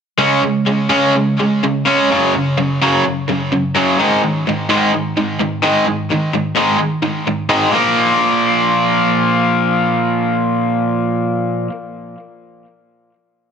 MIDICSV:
0, 0, Header, 1, 2, 480
1, 0, Start_track
1, 0, Key_signature, -5, "minor"
1, 0, Tempo, 471698
1, 208, Time_signature, 4, 2, 24, 8
1, 13753, End_track
2, 0, Start_track
2, 0, Title_t, "Overdriven electric guitar"
2, 0, Program_c, 0, 29
2, 183, Note_on_c, 0, 49, 63
2, 183, Note_on_c, 0, 56, 70
2, 193, Note_on_c, 0, 61, 74
2, 415, Note_off_c, 0, 49, 0
2, 423, Note_off_c, 0, 56, 0
2, 427, Note_off_c, 0, 61, 0
2, 428, Note_on_c, 0, 49, 53
2, 436, Note_on_c, 0, 56, 65
2, 656, Note_off_c, 0, 49, 0
2, 660, Note_off_c, 0, 56, 0
2, 675, Note_on_c, 0, 56, 59
2, 680, Note_on_c, 0, 49, 53
2, 897, Note_off_c, 0, 49, 0
2, 900, Note_off_c, 0, 56, 0
2, 909, Note_on_c, 0, 49, 82
2, 910, Note_on_c, 0, 56, 81
2, 918, Note_on_c, 0, 61, 76
2, 1147, Note_off_c, 0, 49, 0
2, 1148, Note_off_c, 0, 56, 0
2, 1151, Note_off_c, 0, 61, 0
2, 1175, Note_on_c, 0, 49, 61
2, 1183, Note_on_c, 0, 56, 64
2, 1391, Note_off_c, 0, 49, 0
2, 1395, Note_off_c, 0, 56, 0
2, 1419, Note_on_c, 0, 56, 59
2, 1424, Note_on_c, 0, 49, 50
2, 1633, Note_off_c, 0, 56, 0
2, 1636, Note_off_c, 0, 49, 0
2, 1659, Note_on_c, 0, 49, 59
2, 1663, Note_on_c, 0, 56, 64
2, 1873, Note_off_c, 0, 49, 0
2, 1875, Note_off_c, 0, 56, 0
2, 1885, Note_on_c, 0, 49, 75
2, 1901, Note_on_c, 0, 56, 75
2, 1901, Note_on_c, 0, 61, 78
2, 2117, Note_off_c, 0, 49, 0
2, 2124, Note_off_c, 0, 56, 0
2, 2124, Note_off_c, 0, 61, 0
2, 2142, Note_on_c, 0, 42, 61
2, 2142, Note_on_c, 0, 49, 66
2, 2150, Note_on_c, 0, 54, 72
2, 2365, Note_off_c, 0, 42, 0
2, 2365, Note_off_c, 0, 49, 0
2, 2369, Note_off_c, 0, 54, 0
2, 2385, Note_on_c, 0, 42, 56
2, 2391, Note_on_c, 0, 49, 60
2, 2597, Note_off_c, 0, 42, 0
2, 2600, Note_off_c, 0, 49, 0
2, 2620, Note_on_c, 0, 49, 63
2, 2621, Note_on_c, 0, 42, 57
2, 2835, Note_off_c, 0, 42, 0
2, 2835, Note_off_c, 0, 49, 0
2, 2866, Note_on_c, 0, 42, 68
2, 2871, Note_on_c, 0, 49, 83
2, 2875, Note_on_c, 0, 54, 83
2, 3087, Note_off_c, 0, 42, 0
2, 3090, Note_off_c, 0, 49, 0
2, 3092, Note_off_c, 0, 54, 0
2, 3106, Note_on_c, 0, 49, 64
2, 3107, Note_on_c, 0, 42, 58
2, 3318, Note_off_c, 0, 49, 0
2, 3319, Note_off_c, 0, 42, 0
2, 3338, Note_on_c, 0, 42, 51
2, 3348, Note_on_c, 0, 49, 65
2, 3554, Note_off_c, 0, 42, 0
2, 3559, Note_off_c, 0, 49, 0
2, 3582, Note_on_c, 0, 49, 64
2, 3589, Note_on_c, 0, 42, 57
2, 3796, Note_off_c, 0, 49, 0
2, 3799, Note_off_c, 0, 42, 0
2, 3813, Note_on_c, 0, 42, 83
2, 3824, Note_on_c, 0, 54, 83
2, 3827, Note_on_c, 0, 49, 77
2, 4040, Note_off_c, 0, 42, 0
2, 4046, Note_off_c, 0, 54, 0
2, 4048, Note_off_c, 0, 49, 0
2, 4051, Note_on_c, 0, 44, 65
2, 4058, Note_on_c, 0, 51, 64
2, 4064, Note_on_c, 0, 56, 74
2, 4279, Note_off_c, 0, 44, 0
2, 4283, Note_off_c, 0, 51, 0
2, 4286, Note_off_c, 0, 56, 0
2, 4305, Note_on_c, 0, 51, 67
2, 4308, Note_on_c, 0, 44, 53
2, 4517, Note_off_c, 0, 51, 0
2, 4518, Note_off_c, 0, 44, 0
2, 4550, Note_on_c, 0, 44, 57
2, 4567, Note_on_c, 0, 51, 58
2, 4759, Note_off_c, 0, 44, 0
2, 4767, Note_off_c, 0, 51, 0
2, 4774, Note_on_c, 0, 44, 80
2, 4781, Note_on_c, 0, 51, 70
2, 4784, Note_on_c, 0, 56, 84
2, 5000, Note_off_c, 0, 44, 0
2, 5003, Note_off_c, 0, 51, 0
2, 5005, Note_off_c, 0, 56, 0
2, 5024, Note_on_c, 0, 44, 57
2, 5028, Note_on_c, 0, 51, 64
2, 5235, Note_off_c, 0, 44, 0
2, 5237, Note_off_c, 0, 51, 0
2, 5263, Note_on_c, 0, 44, 50
2, 5263, Note_on_c, 0, 51, 63
2, 5474, Note_off_c, 0, 44, 0
2, 5474, Note_off_c, 0, 51, 0
2, 5488, Note_on_c, 0, 44, 54
2, 5500, Note_on_c, 0, 51, 58
2, 5706, Note_off_c, 0, 44, 0
2, 5709, Note_off_c, 0, 51, 0
2, 5721, Note_on_c, 0, 51, 83
2, 5723, Note_on_c, 0, 44, 66
2, 5736, Note_on_c, 0, 56, 76
2, 5952, Note_off_c, 0, 51, 0
2, 5953, Note_off_c, 0, 44, 0
2, 5959, Note_off_c, 0, 56, 0
2, 5968, Note_on_c, 0, 44, 52
2, 5974, Note_on_c, 0, 51, 57
2, 6185, Note_off_c, 0, 44, 0
2, 6188, Note_off_c, 0, 51, 0
2, 6210, Note_on_c, 0, 44, 54
2, 6217, Note_on_c, 0, 51, 60
2, 6426, Note_off_c, 0, 44, 0
2, 6429, Note_off_c, 0, 51, 0
2, 6445, Note_on_c, 0, 44, 54
2, 6446, Note_on_c, 0, 51, 58
2, 6653, Note_off_c, 0, 44, 0
2, 6663, Note_off_c, 0, 51, 0
2, 6665, Note_on_c, 0, 44, 71
2, 6679, Note_on_c, 0, 56, 89
2, 6680, Note_on_c, 0, 51, 83
2, 6887, Note_off_c, 0, 44, 0
2, 6892, Note_off_c, 0, 51, 0
2, 6899, Note_on_c, 0, 44, 64
2, 6904, Note_on_c, 0, 51, 67
2, 6909, Note_off_c, 0, 56, 0
2, 7129, Note_off_c, 0, 44, 0
2, 7132, Note_off_c, 0, 51, 0
2, 7145, Note_on_c, 0, 44, 53
2, 7146, Note_on_c, 0, 51, 61
2, 7371, Note_off_c, 0, 44, 0
2, 7372, Note_off_c, 0, 51, 0
2, 7398, Note_on_c, 0, 44, 54
2, 7399, Note_on_c, 0, 51, 56
2, 7610, Note_off_c, 0, 44, 0
2, 7611, Note_off_c, 0, 51, 0
2, 7623, Note_on_c, 0, 44, 69
2, 7623, Note_on_c, 0, 51, 70
2, 7625, Note_on_c, 0, 56, 77
2, 7840, Note_off_c, 0, 51, 0
2, 7844, Note_on_c, 0, 46, 73
2, 7859, Note_off_c, 0, 44, 0
2, 7860, Note_off_c, 0, 56, 0
2, 7865, Note_on_c, 0, 53, 70
2, 7885, Note_on_c, 0, 58, 78
2, 11878, Note_off_c, 0, 46, 0
2, 11900, Note_off_c, 0, 53, 0
2, 11920, Note_off_c, 0, 58, 0
2, 13753, End_track
0, 0, End_of_file